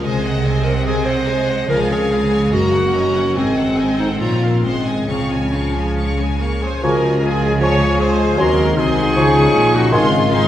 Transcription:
0.03 double bass section C2, cello section C3, harp C3, viola section G#3, clarinet G#4, violin section C5 D#5 G#5
0.24 harp F#3, violin section C5 D#5 F#5
0.45 viola section C4, harp D#4, violin section C5 D#5 G#5
0.64 harp G#4, clarinet A#4, violin section C5 D#5 F#5
0.85 harp C3, clarinet G#4, violin section C5 D#5 G#5
1.05 harp F#3, clarinet C5, violin section C5 D#5 F#5
1.27 viola section G#3, harp D#4, violin section C5 D#5 G#5
1.47 harp G#4, violin section C5 D#5 F#5
1.69 double bass section C#2, cello section C#3, harp C#3, viola section F3, violin section G#4 F5 G#5, clarinet A#4
1.90 harp F3, clarinet G#4, violin section C#5 F5 G#5
2.10 viola section G#3, harp F4, violin section G#4 F5 G#5
2.31 harp G#4, violin section C#5 F5 G#5
2.52 double bass section F#1, harp F#2, cello section F#2, viola section A#3, violin section F#4 D#5 A#5, clarinet F#4
2.72 harp F#3, violin section A#4 F#5
2.93 viola section C#4, harp D#4, violin section F#4 D#5 A#5
3.14 violin section A#4 F#5, harp A#4
3.35 double bass section G#1, cello section G#2, harp G#2, viola section C4, clarinet C4, violin section G#4 D#5 G#5
3.57 harp F#3, violin section A4 C5 F#5
3.78 harp D#4, violin section G#4 D#5 G#5
3.99 clarinet D#4, violin section A4 C5 F#5, harp A4
4.20 double bass section A#1, cello section A#2, harp A#2, clarinet F4, violin section F4 C#5 A#5
4.41 harp C#4 F4, violin section A#4 F5
4.63 double bass section G#1, cello section G#2, harp G#2, viola section G#3, clarinet C4, violin section C5 F#5 C6
4.86 harp D#4 G#4, violin section D#5 G#5
5.07 double bass section C#2, cello section C#3, harp C#3, viola section F3, clarinet C4, violin section G#4 F5 C#6
5.30 harp F3, violin section C#5 G#5
5.51 viola section F3, clarinet C#4, harp F4, violin section G#4 F5 C#6
5.74 harp G#4, violin section C#5 G#5
5.97 harp C#4, violin section G#4 F5 C#6
6.18 harp F3, viola section G#3, violin section C#5 G#5
6.40 viola section A#3, harp F4, violin section G#4 F5 C#6
6.61 viola section G#3, clarinet G#4, harp G#4, violin section C5 C#5 G#5, trumpet section C5
6.82 double bass section C#2, cello section C#3, harp C#3, viola section F3 G#4, bassoon F3, french horn section G#3 F4, clarinet F#4, violin section A#4 G#5, trumpet section A#4, oboe G#5, flute C#6
6.93 harp C#4
7.03 harp G#3
7.13 harp F4
7.21 viola section F3 G#4, french horn section G#3 F4, clarinet F4, violin section G#4 G#5, trumpet section G#4, harp G#4
7.32 harp F4
7.42 harp F5
7.51 harp G#5
7.60 bassoon F3, viola section F3 G#4, french horn section G#3 F4, clarinet G#4, trumpet section C#5, violin section C#5 G#5, harp F5, oboe G#5, flute C#6
7.71 harp G#5
7.80 harp F5
7.90 harp G#4
8.00 harp F4, clarinet G#4, trumpet section C5, violin section C5
8.09 harp G#3
8.19 harp C#4
8.28 harp G#3
8.37 double bass section D#2, harp D#3, cello section D#3, bassoon F#3, viola section F#3 G#4, french horn section C4 F#4, clarinet F#4, violin section A#4 C6, trumpet section A#4, oboe G#5, flute C6
8.48 harp D#4
8.58 harp G#3
8.68 harp F#4
8.76 double bass section C2, cello section C3, viola section F#3 G#4, french horn section C4 F#4, clarinet D#4, trumpet section G#4, violin section G#4 C6, harp C5
8.88 harp G#4
8.98 harp F#5
9.07 harp C6
9.15 double bass section C#2, cello section C#3, harp C#3, viola section F3 G#4, bassoon F3, french horn section C#4 F4, oboe G#5, violin section C#6, flute C#6
9.26 harp C#4
9.35 harp G#3
9.46 harp F4
9.54 double bass section A#1, cello section A#2, harp C#5
9.65 harp G#4
9.74 clarinet D#4, trumpet section F#4, violin section F#4, harp F5
9.84 harp C#6
9.92 double bass section G#1, cello section G#2, harp G#2, viola section D#3 G#4, bassoon D#3, french horn section C4 G#4, clarinet C#4, trumpet section F4, violin section F4 C6, oboe G#5, flute C6
10.04 harp D#3
10.13 harp G#3
10.23 harp D#4
10.31 viola section D#3 G#4, french horn section C4 G#4, clarinet C4, violin section D#4 C6, trumpet section D#4, harp C5
10.41 harp G#4

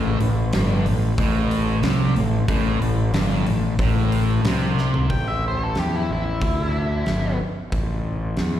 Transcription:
Already playing: fingered electric bass A1, distorted electric guitar A2
0.20 fingered electric bass A1, distorted electric guitar A2, open hi-hat
0.53 fingered electric bass G1, distorted electric guitar G2, snare, open hi-hat
0.86 fingered electric bass A1, distorted electric guitar A2, open hi-hat
1.18 fingered electric bass A1, distorted electric guitar A2, kick, open hi-hat
1.51 open hi-hat
1.82 fingered electric bass C2, distorted electric guitar C3, snare, open hi-hat
2.16 fingered electric bass A1, distorted electric guitar A2, open hi-hat
2.48 fingered electric bass A1, distorted electric guitar A2, kick, open hi-hat
2.81 fingered electric bass A1, distorted electric guitar A2, open hi-hat
3.13 fingered electric bass G1, distorted electric guitar G2, snare, open hi-hat
3.47 fingered electric bass A1, distorted electric guitar A2, open hi-hat
3.79 fingered electric bass A1, distorted electric guitar A2, kick, open hi-hat
4.12 open hi-hat
4.44 fingered electric bass C2, distorted electric guitar C3, snare, open hi-hat
4.78 snare
4.94 floor tom
5.10 fingered electric bass A1, lead electric guitar G5, kick, open hi-hat
5.28 lead electric guitar E5
5.48 lead electric guitar C5
5.63 lead electric guitar A4
5.75 fingered electric bass E2, lead electric guitar G4, snare, open hi-hat
5.96 lead electric guitar E4
6.09 fingered electric bass A1, lead electric guitar E4
6.42 fingered electric bass D2, kick, open hi-hat
7.06 fingered electric bass G1, snare, open hi-hat
7.41 muted fingered electric bass stroke
7.72 fingered electric bass A1, kick, open hi-hat
8.37 fingered electric bass E2, snare, open hi-hat

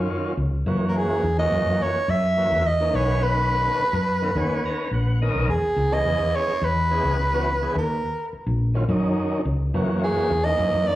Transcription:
Already playing: tonewheel organ D#3 F#3 C#4 F4
0.37 fretless electric bass C#2
0.66 fretless electric bass F#2, tonewheel organ E3 A#3 C#4 F#4
0.88 soprano saxophone A#4
0.97 soprano saxophone G#4
1.10 muted fretless electric bass stroke
1.23 fretless electric bass E2
1.38 tonewheel organ E3 A#3 C#4 F#4, soprano saxophone D#5
1.52 fretless electric bass F#2
1.66 fretless electric bass F#2
1.82 soprano saxophone C#5
1.95 muted fretless electric bass stroke
2.08 fretless electric bass F#2, soprano saxophone E5
2.37 tonewheel organ E3 A#3 C#4 F#4
2.52 fretless electric bass E2
2.67 soprano saxophone D#5
2.80 tonewheel organ E3 A#3 C#4 D#4
2.93 fretless electric bass B1, tonewheel organ D#3 B3 C#4 B4, soprano saxophone C#5
3.23 soprano saxophone B4
3.79 muted fretless electric bass stroke
3.93 fretless electric bass F#2
4.22 tonewheel organ D#3 B3 C#4 A#4
4.35 fretless electric bass D#2, tonewheel organ D#3 B3 C#4 C#5
4.65 tonewheel organ A#5
4.91 fretless electric bass A#1, tonewheel organ F#5
5.21 tonewheel organ D#3 B3 C#4 A#4 D#5
5.34 fretless electric bass B1
5.48 fretless electric bass E2, soprano saxophone G#4
5.62 muted fretless electric bass stroke
5.76 fretless electric bass C#2
5.92 tonewheel organ E3 B3 C#4 G#4, soprano saxophone D#5
6.05 fretless electric bass E2
6.19 fretless electric bass E2
6.35 soprano saxophone C#5
6.48 muted fretless electric bass stroke
6.62 fretless electric bass E2, soprano saxophone B4
6.90 tonewheel organ E3 B3 C#4 G#4
7.04 fretless electric bass C#2
7.33 tonewheel organ E3 B3 C#4 F#4
7.61 tonewheel organ E3 B3 C#4 G#4
7.75 fretless electric bass D#2, soprano saxophone A#4
8.33 muted fretless electric bass stroke
8.47 fretless electric bass A#1
8.74 tonewheel organ D#3 F#3 C#4 F4
8.89 fretless electric bass F#2, tonewheel organ D#3 F#3 C#4 D#4
9.45 fretless electric bass C#2
9.74 fretless electric bass F#2, tonewheel organ E3 A#3 C#4 F#4
10.03 soprano saxophone G#4
10.17 muted fretless electric bass stroke
10.31 fretless electric bass E2
10.44 tonewheel organ E3 A#3 C#4 D#4, soprano saxophone D#5
10.59 fretless electric bass F#2
10.73 fretless electric bass F#2
10.87 soprano saxophone D5

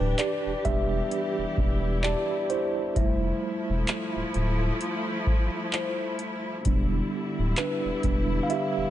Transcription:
Already playing: string section E3 D4 G4, tine electric piano D4 B4, celesta G5
0.00 sub bass D1
0.18 tine electric piano G4 D5, clap, closed hi-hat
0.46 sub bass E1
0.65 sub bass E1, tine electric piano G3 B3 D4 G4 E5, kick, closed hi-hat
1.10 string section E4, closed hi-hat
1.38 sub bass E1
1.57 sub bass E1, kick
2.03 tine electric piano G4 D5, celesta A5, clap, closed hi-hat
2.50 tine electric piano E4 C5, closed hi-hat
2.95 sub bass F1, string section F3 A3 E4, tine electric piano G3 A3 E4, celesta E5, kick, closed hi-hat
3.70 sub bass E1
3.88 clap, closed hi-hat
4.16 sub bass D1
4.34 sub bass D1, closed hi-hat
4.81 closed hi-hat
5.27 kick
5.73 celesta C5, clap, closed hi-hat
6.19 closed hi-hat
6.65 sub bass E1, string section D3 G3 E4, tine electric piano G3 B3 D4, kick, closed hi-hat
7.39 sub bass D1
7.57 tine electric piano D4 B4, clap, closed hi-hat
7.85 sub bass E1
8.03 sub bass E1, tine electric piano G3 B3 D4, kick, closed hi-hat
8.43 tine electric piano F5
8.50 tine electric piano G4 E5, closed hi-hat
8.77 sub bass E1

